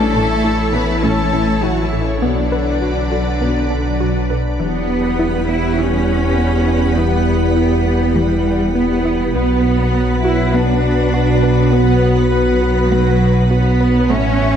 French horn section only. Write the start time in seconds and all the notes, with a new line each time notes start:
1.03 E3 C#4
2.21 F#3 D4
3.40 F#3 D4
4.59 E4 G4
9.35 F#4 B4
14.09 C#5 E5